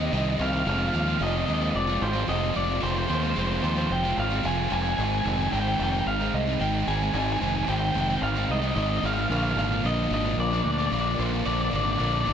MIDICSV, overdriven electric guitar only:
0, 0, Header, 1, 2, 480
1, 0, Start_track
1, 0, Tempo, 539084
1, 596, Time_signature, 4, 2, 24, 8
1, 10980, End_track
2, 0, Start_track
2, 0, Title_t, "Overdriven electric guitar"
2, 0, Program_c, 0, 29
2, 0, Note_on_c, 0, 60, 77
2, 0, Note_on_c, 0, 67, 75
2, 6, Note_on_c, 0, 55, 58
2, 101, Note_on_c, 0, 48, 97
2, 103, Note_off_c, 0, 55, 0
2, 111, Note_on_c, 0, 51, 97
2, 114, Note_on_c, 0, 55, 98
2, 116, Note_off_c, 0, 60, 0
2, 116, Note_off_c, 0, 67, 0
2, 120, Note_on_c, 0, 60, 113
2, 127, Note_on_c, 0, 67, 119
2, 329, Note_off_c, 0, 51, 0
2, 338, Note_off_c, 0, 55, 0
2, 340, Note_on_c, 0, 51, 81
2, 349, Note_on_c, 0, 55, 92
2, 354, Note_off_c, 0, 67, 0
2, 355, Note_off_c, 0, 60, 0
2, 359, Note_on_c, 0, 60, 86
2, 365, Note_on_c, 0, 67, 99
2, 451, Note_off_c, 0, 67, 0
2, 462, Note_on_c, 0, 67, 79
2, 470, Note_off_c, 0, 60, 0
2, 474, Note_on_c, 0, 60, 62
2, 475, Note_off_c, 0, 55, 0
2, 486, Note_on_c, 0, 55, 59
2, 574, Note_off_c, 0, 48, 0
2, 574, Note_off_c, 0, 51, 0
2, 574, Note_off_c, 0, 67, 0
2, 584, Note_on_c, 0, 53, 93
2, 586, Note_off_c, 0, 55, 0
2, 595, Note_on_c, 0, 56, 101
2, 599, Note_off_c, 0, 60, 0
2, 602, Note_on_c, 0, 60, 101
2, 609, Note_on_c, 0, 65, 113
2, 817, Note_off_c, 0, 53, 0
2, 821, Note_on_c, 0, 53, 84
2, 827, Note_off_c, 0, 56, 0
2, 830, Note_on_c, 0, 56, 81
2, 835, Note_off_c, 0, 60, 0
2, 838, Note_on_c, 0, 60, 93
2, 843, Note_off_c, 0, 65, 0
2, 846, Note_on_c, 0, 65, 91
2, 942, Note_off_c, 0, 65, 0
2, 946, Note_on_c, 0, 65, 81
2, 952, Note_off_c, 0, 60, 0
2, 956, Note_on_c, 0, 60, 71
2, 964, Note_off_c, 0, 56, 0
2, 968, Note_on_c, 0, 56, 61
2, 1057, Note_off_c, 0, 53, 0
2, 1061, Note_on_c, 0, 53, 102
2, 1069, Note_off_c, 0, 56, 0
2, 1072, Note_on_c, 0, 56, 110
2, 1079, Note_off_c, 0, 60, 0
2, 1082, Note_on_c, 0, 60, 104
2, 1085, Note_off_c, 0, 65, 0
2, 1088, Note_on_c, 0, 65, 115
2, 1300, Note_off_c, 0, 53, 0
2, 1304, Note_on_c, 0, 53, 80
2, 1309, Note_off_c, 0, 56, 0
2, 1313, Note_on_c, 0, 56, 87
2, 1318, Note_off_c, 0, 60, 0
2, 1322, Note_off_c, 0, 65, 0
2, 1322, Note_on_c, 0, 60, 91
2, 1326, Note_on_c, 0, 65, 99
2, 1418, Note_off_c, 0, 65, 0
2, 1428, Note_on_c, 0, 65, 76
2, 1437, Note_off_c, 0, 60, 0
2, 1441, Note_on_c, 0, 60, 67
2, 1447, Note_off_c, 0, 56, 0
2, 1450, Note_on_c, 0, 56, 66
2, 1655, Note_off_c, 0, 65, 0
2, 1665, Note_on_c, 0, 65, 82
2, 1670, Note_off_c, 0, 53, 0
2, 1673, Note_off_c, 0, 60, 0
2, 1677, Note_on_c, 0, 60, 69
2, 1684, Note_off_c, 0, 56, 0
2, 1687, Note_on_c, 0, 56, 67
2, 1885, Note_off_c, 0, 65, 0
2, 1896, Note_on_c, 0, 65, 85
2, 1908, Note_off_c, 0, 60, 0
2, 1912, Note_on_c, 0, 60, 64
2, 1920, Note_off_c, 0, 56, 0
2, 1924, Note_on_c, 0, 56, 64
2, 2019, Note_on_c, 0, 53, 97
2, 2024, Note_off_c, 0, 56, 0
2, 2027, Note_on_c, 0, 56, 103
2, 2029, Note_off_c, 0, 60, 0
2, 2032, Note_off_c, 0, 65, 0
2, 2032, Note_on_c, 0, 60, 101
2, 2042, Note_on_c, 0, 65, 102
2, 2248, Note_off_c, 0, 53, 0
2, 2258, Note_on_c, 0, 53, 90
2, 2263, Note_off_c, 0, 56, 0
2, 2266, Note_on_c, 0, 56, 97
2, 2270, Note_off_c, 0, 60, 0
2, 2271, Note_off_c, 0, 65, 0
2, 2273, Note_on_c, 0, 60, 95
2, 2282, Note_on_c, 0, 65, 91
2, 2366, Note_off_c, 0, 65, 0
2, 2376, Note_on_c, 0, 65, 76
2, 2386, Note_off_c, 0, 60, 0
2, 2390, Note_on_c, 0, 60, 75
2, 2398, Note_off_c, 0, 56, 0
2, 2401, Note_on_c, 0, 56, 63
2, 2488, Note_off_c, 0, 53, 0
2, 2498, Note_on_c, 0, 53, 112
2, 2504, Note_off_c, 0, 56, 0
2, 2508, Note_on_c, 0, 56, 116
2, 2510, Note_off_c, 0, 65, 0
2, 2511, Note_off_c, 0, 60, 0
2, 2514, Note_on_c, 0, 60, 102
2, 2521, Note_on_c, 0, 65, 111
2, 2721, Note_off_c, 0, 53, 0
2, 2732, Note_on_c, 0, 53, 76
2, 2741, Note_off_c, 0, 56, 0
2, 2744, Note_on_c, 0, 56, 83
2, 2745, Note_off_c, 0, 60, 0
2, 2749, Note_on_c, 0, 60, 86
2, 2750, Note_off_c, 0, 65, 0
2, 2761, Note_on_c, 0, 65, 83
2, 2850, Note_off_c, 0, 65, 0
2, 2861, Note_on_c, 0, 65, 82
2, 2869, Note_off_c, 0, 60, 0
2, 2873, Note_on_c, 0, 60, 71
2, 2882, Note_off_c, 0, 56, 0
2, 2886, Note_on_c, 0, 56, 62
2, 2966, Note_off_c, 0, 53, 0
2, 2977, Note_on_c, 0, 53, 88
2, 2983, Note_off_c, 0, 56, 0
2, 2987, Note_on_c, 0, 56, 107
2, 2990, Note_off_c, 0, 60, 0
2, 2990, Note_off_c, 0, 65, 0
2, 2994, Note_on_c, 0, 60, 96
2, 3001, Note_on_c, 0, 65, 110
2, 3207, Note_off_c, 0, 53, 0
2, 3218, Note_on_c, 0, 53, 84
2, 3223, Note_off_c, 0, 56, 0
2, 3227, Note_on_c, 0, 56, 75
2, 3230, Note_off_c, 0, 60, 0
2, 3231, Note_off_c, 0, 65, 0
2, 3234, Note_on_c, 0, 60, 81
2, 3242, Note_on_c, 0, 65, 84
2, 3333, Note_off_c, 0, 65, 0
2, 3344, Note_on_c, 0, 65, 73
2, 3351, Note_off_c, 0, 60, 0
2, 3355, Note_on_c, 0, 60, 71
2, 3362, Note_off_c, 0, 56, 0
2, 3366, Note_on_c, 0, 56, 60
2, 3578, Note_off_c, 0, 65, 0
2, 3587, Note_off_c, 0, 53, 0
2, 3588, Note_on_c, 0, 65, 79
2, 3599, Note_off_c, 0, 60, 0
2, 3603, Note_on_c, 0, 60, 68
2, 3606, Note_off_c, 0, 56, 0
2, 3610, Note_on_c, 0, 56, 62
2, 3816, Note_off_c, 0, 65, 0
2, 3827, Note_on_c, 0, 65, 81
2, 3836, Note_off_c, 0, 60, 0
2, 3840, Note_on_c, 0, 60, 68
2, 3847, Note_off_c, 0, 56, 0
2, 3851, Note_on_c, 0, 56, 59
2, 3938, Note_on_c, 0, 53, 93
2, 3944, Note_off_c, 0, 56, 0
2, 3948, Note_on_c, 0, 56, 103
2, 3951, Note_off_c, 0, 60, 0
2, 3952, Note_off_c, 0, 65, 0
2, 3955, Note_on_c, 0, 60, 98
2, 3963, Note_on_c, 0, 65, 101
2, 4168, Note_off_c, 0, 53, 0
2, 4179, Note_on_c, 0, 53, 74
2, 4185, Note_off_c, 0, 56, 0
2, 4188, Note_on_c, 0, 56, 83
2, 4191, Note_off_c, 0, 65, 0
2, 4192, Note_off_c, 0, 60, 0
2, 4196, Note_on_c, 0, 60, 90
2, 4202, Note_on_c, 0, 65, 89
2, 4293, Note_off_c, 0, 65, 0
2, 4304, Note_on_c, 0, 65, 73
2, 4315, Note_off_c, 0, 60, 0
2, 4318, Note_on_c, 0, 60, 69
2, 4327, Note_off_c, 0, 56, 0
2, 4330, Note_on_c, 0, 56, 58
2, 4413, Note_off_c, 0, 53, 0
2, 4416, Note_off_c, 0, 65, 0
2, 4427, Note_on_c, 0, 44, 91
2, 4436, Note_on_c, 0, 51, 107
2, 4440, Note_off_c, 0, 56, 0
2, 4444, Note_off_c, 0, 60, 0
2, 4444, Note_on_c, 0, 56, 109
2, 4447, Note_on_c, 0, 60, 111
2, 4452, Note_on_c, 0, 63, 113
2, 4657, Note_off_c, 0, 51, 0
2, 4668, Note_on_c, 0, 51, 78
2, 4675, Note_off_c, 0, 56, 0
2, 4678, Note_on_c, 0, 56, 79
2, 4683, Note_off_c, 0, 60, 0
2, 4686, Note_on_c, 0, 60, 80
2, 4689, Note_off_c, 0, 63, 0
2, 4693, Note_on_c, 0, 63, 84
2, 4780, Note_off_c, 0, 63, 0
2, 4784, Note_on_c, 0, 63, 72
2, 4792, Note_off_c, 0, 60, 0
2, 4796, Note_on_c, 0, 60, 70
2, 4802, Note_off_c, 0, 56, 0
2, 4805, Note_on_c, 0, 56, 57
2, 4900, Note_off_c, 0, 51, 0
2, 4902, Note_off_c, 0, 44, 0
2, 4905, Note_on_c, 0, 44, 101
2, 4911, Note_on_c, 0, 51, 100
2, 4914, Note_off_c, 0, 56, 0
2, 4918, Note_on_c, 0, 56, 103
2, 4919, Note_off_c, 0, 60, 0
2, 4922, Note_on_c, 0, 60, 104
2, 4924, Note_off_c, 0, 63, 0
2, 4927, Note_on_c, 0, 63, 110
2, 5132, Note_off_c, 0, 51, 0
2, 5143, Note_on_c, 0, 51, 83
2, 5150, Note_off_c, 0, 56, 0
2, 5153, Note_on_c, 0, 56, 78
2, 5159, Note_off_c, 0, 60, 0
2, 5162, Note_on_c, 0, 60, 88
2, 5167, Note_off_c, 0, 63, 0
2, 5171, Note_on_c, 0, 63, 82
2, 5257, Note_off_c, 0, 63, 0
2, 5268, Note_on_c, 0, 63, 82
2, 5271, Note_off_c, 0, 60, 0
2, 5282, Note_off_c, 0, 56, 0
2, 5282, Note_on_c, 0, 60, 64
2, 5292, Note_on_c, 0, 56, 55
2, 5506, Note_off_c, 0, 63, 0
2, 5510, Note_off_c, 0, 51, 0
2, 5515, Note_off_c, 0, 60, 0
2, 5517, Note_on_c, 0, 63, 78
2, 5526, Note_on_c, 0, 60, 65
2, 5527, Note_off_c, 0, 56, 0
2, 5537, Note_on_c, 0, 56, 65
2, 5743, Note_off_c, 0, 63, 0
2, 5754, Note_on_c, 0, 63, 78
2, 5756, Note_off_c, 0, 60, 0
2, 5766, Note_off_c, 0, 56, 0
2, 5766, Note_on_c, 0, 60, 68
2, 5777, Note_on_c, 0, 56, 60
2, 5869, Note_off_c, 0, 44, 0
2, 5870, Note_off_c, 0, 56, 0
2, 5873, Note_on_c, 0, 44, 93
2, 5879, Note_off_c, 0, 60, 0
2, 5879, Note_on_c, 0, 51, 99
2, 5881, Note_on_c, 0, 56, 100
2, 5882, Note_off_c, 0, 63, 0
2, 5890, Note_on_c, 0, 60, 99
2, 5893, Note_on_c, 0, 63, 108
2, 6104, Note_off_c, 0, 51, 0
2, 6112, Note_off_c, 0, 56, 0
2, 6115, Note_on_c, 0, 51, 82
2, 6122, Note_off_c, 0, 60, 0
2, 6122, Note_on_c, 0, 56, 84
2, 6128, Note_off_c, 0, 63, 0
2, 6133, Note_on_c, 0, 60, 93
2, 6139, Note_on_c, 0, 63, 100
2, 6223, Note_off_c, 0, 63, 0
2, 6233, Note_on_c, 0, 63, 69
2, 6235, Note_off_c, 0, 60, 0
2, 6246, Note_on_c, 0, 60, 71
2, 6247, Note_off_c, 0, 56, 0
2, 6258, Note_on_c, 0, 56, 62
2, 6339, Note_off_c, 0, 44, 0
2, 6346, Note_off_c, 0, 51, 0
2, 6350, Note_on_c, 0, 44, 105
2, 6354, Note_off_c, 0, 56, 0
2, 6357, Note_on_c, 0, 51, 105
2, 6358, Note_off_c, 0, 60, 0
2, 6364, Note_off_c, 0, 63, 0
2, 6365, Note_on_c, 0, 56, 103
2, 6369, Note_on_c, 0, 60, 114
2, 6375, Note_on_c, 0, 63, 118
2, 6576, Note_off_c, 0, 51, 0
2, 6586, Note_off_c, 0, 56, 0
2, 6586, Note_on_c, 0, 51, 75
2, 6591, Note_off_c, 0, 60, 0
2, 6596, Note_on_c, 0, 56, 88
2, 6600, Note_off_c, 0, 63, 0
2, 6601, Note_on_c, 0, 60, 91
2, 6610, Note_on_c, 0, 63, 92
2, 6699, Note_off_c, 0, 63, 0
2, 6708, Note_off_c, 0, 60, 0
2, 6710, Note_on_c, 0, 63, 77
2, 6719, Note_on_c, 0, 60, 70
2, 6723, Note_off_c, 0, 56, 0
2, 6734, Note_on_c, 0, 56, 56
2, 6812, Note_off_c, 0, 44, 0
2, 6822, Note_off_c, 0, 51, 0
2, 6823, Note_on_c, 0, 44, 100
2, 6826, Note_off_c, 0, 56, 0
2, 6830, Note_off_c, 0, 60, 0
2, 6832, Note_on_c, 0, 51, 110
2, 6837, Note_off_c, 0, 63, 0
2, 6837, Note_on_c, 0, 56, 107
2, 6840, Note_on_c, 0, 60, 116
2, 6847, Note_on_c, 0, 63, 101
2, 7062, Note_off_c, 0, 51, 0
2, 7069, Note_off_c, 0, 56, 0
2, 7073, Note_on_c, 0, 51, 78
2, 7078, Note_off_c, 0, 60, 0
2, 7079, Note_on_c, 0, 56, 88
2, 7085, Note_off_c, 0, 63, 0
2, 7088, Note_on_c, 0, 60, 85
2, 7096, Note_on_c, 0, 63, 85
2, 7178, Note_off_c, 0, 63, 0
2, 7189, Note_on_c, 0, 63, 72
2, 7191, Note_off_c, 0, 60, 0
2, 7201, Note_on_c, 0, 60, 74
2, 7203, Note_off_c, 0, 56, 0
2, 7214, Note_on_c, 0, 56, 67
2, 7310, Note_off_c, 0, 44, 0
2, 7427, Note_off_c, 0, 63, 0
2, 7435, Note_off_c, 0, 51, 0
2, 7438, Note_on_c, 0, 63, 79
2, 7441, Note_off_c, 0, 60, 0
2, 7450, Note_off_c, 0, 56, 0
2, 7451, Note_on_c, 0, 60, 74
2, 7461, Note_on_c, 0, 56, 63
2, 7662, Note_off_c, 0, 63, 0
2, 7672, Note_on_c, 0, 63, 77
2, 7676, Note_off_c, 0, 60, 0
2, 7685, Note_off_c, 0, 56, 0
2, 7686, Note_on_c, 0, 60, 69
2, 7695, Note_on_c, 0, 56, 67
2, 7794, Note_on_c, 0, 44, 101
2, 7799, Note_off_c, 0, 56, 0
2, 7804, Note_on_c, 0, 51, 107
2, 7805, Note_off_c, 0, 60, 0
2, 7810, Note_off_c, 0, 63, 0
2, 7810, Note_on_c, 0, 56, 106
2, 7816, Note_on_c, 0, 60, 105
2, 7821, Note_on_c, 0, 63, 122
2, 8018, Note_off_c, 0, 51, 0
2, 8029, Note_on_c, 0, 51, 79
2, 8030, Note_off_c, 0, 56, 0
2, 8038, Note_off_c, 0, 60, 0
2, 8040, Note_on_c, 0, 56, 94
2, 8042, Note_off_c, 0, 63, 0
2, 8049, Note_on_c, 0, 60, 99
2, 8053, Note_on_c, 0, 63, 105
2, 8150, Note_off_c, 0, 63, 0
2, 8159, Note_off_c, 0, 60, 0
2, 8161, Note_on_c, 0, 63, 82
2, 8170, Note_on_c, 0, 60, 73
2, 8172, Note_off_c, 0, 56, 0
2, 8183, Note_on_c, 0, 56, 69
2, 8259, Note_off_c, 0, 51, 0
2, 8261, Note_off_c, 0, 44, 0
2, 8265, Note_off_c, 0, 63, 0
2, 8269, Note_off_c, 0, 60, 0
2, 8276, Note_off_c, 0, 56, 0
2, 8278, Note_on_c, 0, 46, 97
2, 8287, Note_on_c, 0, 50, 118
2, 8294, Note_on_c, 0, 53, 104
2, 8299, Note_on_c, 0, 58, 114
2, 8305, Note_on_c, 0, 62, 117
2, 8504, Note_off_c, 0, 50, 0
2, 8515, Note_on_c, 0, 50, 83
2, 8522, Note_off_c, 0, 53, 0
2, 8525, Note_on_c, 0, 53, 83
2, 8528, Note_off_c, 0, 58, 0
2, 8531, Note_on_c, 0, 58, 86
2, 8535, Note_off_c, 0, 62, 0
2, 8539, Note_on_c, 0, 62, 94
2, 8639, Note_off_c, 0, 62, 0
2, 8642, Note_on_c, 0, 62, 74
2, 8652, Note_off_c, 0, 58, 0
2, 8655, Note_on_c, 0, 58, 72
2, 8663, Note_off_c, 0, 53, 0
2, 8667, Note_on_c, 0, 53, 61
2, 8754, Note_off_c, 0, 50, 0
2, 8755, Note_off_c, 0, 46, 0
2, 8759, Note_on_c, 0, 46, 103
2, 8764, Note_on_c, 0, 50, 109
2, 8767, Note_off_c, 0, 53, 0
2, 8770, Note_on_c, 0, 53, 97
2, 8774, Note_off_c, 0, 58, 0
2, 8778, Note_on_c, 0, 58, 116
2, 8779, Note_off_c, 0, 62, 0
2, 8783, Note_on_c, 0, 62, 103
2, 8980, Note_off_c, 0, 50, 0
2, 8991, Note_on_c, 0, 50, 86
2, 8996, Note_off_c, 0, 53, 0
2, 8999, Note_on_c, 0, 53, 88
2, 9006, Note_off_c, 0, 58, 0
2, 9010, Note_on_c, 0, 58, 86
2, 9013, Note_off_c, 0, 62, 0
2, 9016, Note_on_c, 0, 62, 94
2, 9110, Note_off_c, 0, 62, 0
2, 9121, Note_on_c, 0, 62, 82
2, 9128, Note_off_c, 0, 58, 0
2, 9131, Note_on_c, 0, 58, 72
2, 9132, Note_off_c, 0, 53, 0
2, 9143, Note_on_c, 0, 53, 71
2, 9353, Note_off_c, 0, 62, 0
2, 9354, Note_off_c, 0, 50, 0
2, 9363, Note_on_c, 0, 62, 81
2, 9371, Note_off_c, 0, 58, 0
2, 9374, Note_on_c, 0, 58, 70
2, 9376, Note_off_c, 0, 53, 0
2, 9387, Note_on_c, 0, 53, 67
2, 9591, Note_off_c, 0, 62, 0
2, 9601, Note_on_c, 0, 62, 74
2, 9607, Note_off_c, 0, 58, 0
2, 9610, Note_on_c, 0, 58, 69
2, 9611, Note_off_c, 0, 53, 0
2, 9622, Note_on_c, 0, 53, 67
2, 9707, Note_off_c, 0, 46, 0
2, 9710, Note_on_c, 0, 46, 93
2, 9717, Note_off_c, 0, 53, 0
2, 9718, Note_on_c, 0, 50, 102
2, 9724, Note_off_c, 0, 62, 0
2, 9725, Note_off_c, 0, 58, 0
2, 9727, Note_on_c, 0, 53, 104
2, 9729, Note_on_c, 0, 58, 102
2, 9735, Note_on_c, 0, 62, 103
2, 9946, Note_off_c, 0, 50, 0
2, 9954, Note_off_c, 0, 53, 0
2, 9957, Note_on_c, 0, 50, 80
2, 9965, Note_on_c, 0, 53, 85
2, 9969, Note_off_c, 0, 62, 0
2, 9971, Note_off_c, 0, 58, 0
2, 9974, Note_on_c, 0, 58, 92
2, 9979, Note_on_c, 0, 62, 99
2, 10063, Note_off_c, 0, 62, 0
2, 10074, Note_on_c, 0, 62, 70
2, 10078, Note_off_c, 0, 58, 0
2, 10086, Note_off_c, 0, 53, 0
2, 10089, Note_on_c, 0, 58, 74
2, 10097, Note_on_c, 0, 53, 59
2, 10183, Note_off_c, 0, 46, 0
2, 10188, Note_off_c, 0, 50, 0
2, 10194, Note_on_c, 0, 46, 97
2, 10197, Note_off_c, 0, 53, 0
2, 10199, Note_on_c, 0, 50, 102
2, 10202, Note_off_c, 0, 58, 0
2, 10207, Note_off_c, 0, 62, 0
2, 10207, Note_on_c, 0, 53, 108
2, 10213, Note_on_c, 0, 58, 109
2, 10218, Note_on_c, 0, 62, 106
2, 10419, Note_off_c, 0, 50, 0
2, 10429, Note_off_c, 0, 53, 0
2, 10430, Note_on_c, 0, 50, 80
2, 10437, Note_off_c, 0, 58, 0
2, 10439, Note_on_c, 0, 53, 77
2, 10442, Note_off_c, 0, 62, 0
2, 10447, Note_on_c, 0, 58, 81
2, 10453, Note_on_c, 0, 62, 87
2, 10540, Note_off_c, 0, 62, 0
2, 10550, Note_on_c, 0, 62, 80
2, 10553, Note_off_c, 0, 58, 0
2, 10564, Note_off_c, 0, 53, 0
2, 10564, Note_on_c, 0, 58, 61
2, 10574, Note_on_c, 0, 53, 59
2, 10658, Note_off_c, 0, 46, 0
2, 10668, Note_off_c, 0, 50, 0
2, 10669, Note_on_c, 0, 46, 93
2, 10671, Note_off_c, 0, 53, 0
2, 10678, Note_on_c, 0, 50, 108
2, 10679, Note_off_c, 0, 58, 0
2, 10681, Note_off_c, 0, 62, 0
2, 10681, Note_on_c, 0, 53, 102
2, 10689, Note_on_c, 0, 58, 105
2, 10692, Note_on_c, 0, 62, 106
2, 10896, Note_off_c, 0, 50, 0
2, 10905, Note_off_c, 0, 53, 0
2, 10907, Note_on_c, 0, 50, 82
2, 10912, Note_off_c, 0, 58, 0
2, 10916, Note_on_c, 0, 53, 79
2, 10919, Note_off_c, 0, 62, 0
2, 10923, Note_on_c, 0, 58, 88
2, 10930, Note_on_c, 0, 62, 91
2, 10980, Note_off_c, 0, 46, 0
2, 10980, Note_off_c, 0, 50, 0
2, 10980, Note_off_c, 0, 53, 0
2, 10980, Note_off_c, 0, 58, 0
2, 10980, Note_off_c, 0, 62, 0
2, 10980, End_track
0, 0, End_of_file